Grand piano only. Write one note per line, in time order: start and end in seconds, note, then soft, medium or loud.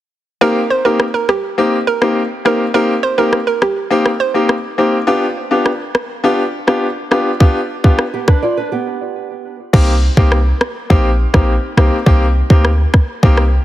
0.41 0.59 A#3 medium
0.41 0.59 C4 medium
0.41 0.59 D#4 medium
0.41 0.59 G4 medium
0.85 1.03 A#3 medium
0.85 1.03 C4 medium
0.85 1.03 D#4 medium
0.85 1.03 G4 medium
1.58 1.75 A#3 medium
1.58 1.75 C4 medium
1.58 1.76 D#4 medium
1.58 1.76 G4 medium
2.01 2.19 A#3 medium
2.01 2.19 C4 medium
2.01 2.19 D#4 medium
2.01 2.19 G4 medium
2.45 2.63 A#3 medium
2.45 2.63 C4 medium
2.45 2.63 D#4 medium
2.45 2.63 G4 medium
2.74 2.92 A#3 medium
2.74 2.92 C4 medium
2.74 2.92 D#4 medium
2.74 2.92 G4 medium
3.18 3.36 A#3 medium
3.18 3.36 C4 medium
3.18 3.36 D#4 medium
3.18 3.36 G4 medium
3.91 4.08 A#3 medium
3.91 4.08 C4 medium
3.91 4.09 D#4 medium
3.91 4.09 G4 medium
4.34 4.52 A#3 medium
4.34 4.52 C4 medium
4.34 4.52 D#4 medium
4.34 4.52 G4 medium
4.78 4.96 A#3 medium
4.78 4.96 C4 medium
4.78 4.96 D#4 medium
4.78 4.96 G4 medium
5.07 5.25 B3 medium
5.07 5.25 D4 medium
5.07 5.25 F4 medium
5.07 5.25 G4 loud
5.51 5.68 B3 medium
5.51 5.69 D4 medium
5.51 5.69 F4 medium
5.51 5.69 G4 medium
6.24 6.41 B3 medium
6.24 6.41 D4 medium
6.24 6.42 F4 medium
6.24 6.42 G4 loud
6.67 6.85 B3 medium
6.67 6.85 D4 medium
6.67 6.85 F4 medium
6.67 6.85 G4 medium
7.11 7.29 B3 medium
7.11 7.29 D4 medium
7.11 7.29 F4 medium
7.11 7.29 G4 medium
7.40 7.58 B3 medium
7.40 7.58 D4 medium
7.40 7.58 F4 medium
7.40 7.58 G4 loud
7.84 8.02 B3 medium
7.84 8.02 D4 medium
7.84 8.02 F4 medium
7.84 8.02 G4 medium
9.73 9.91 A#3 medium
9.73 9.91 C4 medium
9.73 9.91 D#4 medium
9.73 9.91 G4 medium
10.17 10.35 A#3 medium
10.17 10.35 C4 medium
10.17 10.35 D#4 medium
10.17 10.35 G4 medium
10.90 11.07 A#3 medium
10.90 11.08 C4 medium
10.90 11.08 D#4 medium
10.90 11.08 G4 medium
11.34 11.51 A#3 medium
11.34 11.51 C4 medium
11.34 11.51 D#4 medium
11.34 11.51 G4 medium
11.77 11.95 A#3 medium
11.77 11.95 C4 medium
11.77 11.95 D#4 medium
11.77 11.95 G4 medium
12.06 12.24 A#3 medium
12.06 12.24 C4 medium
12.06 12.24 D#4 medium
12.06 12.24 G4 loud
12.50 12.68 A#3 medium
12.50 12.68 C4 medium
12.50 12.68 D#4 medium
12.50 12.68 G4 medium
13.23 13.40 A#3 medium
13.23 13.40 C4 medium
13.23 13.41 D#4 medium
13.23 13.41 G4 loud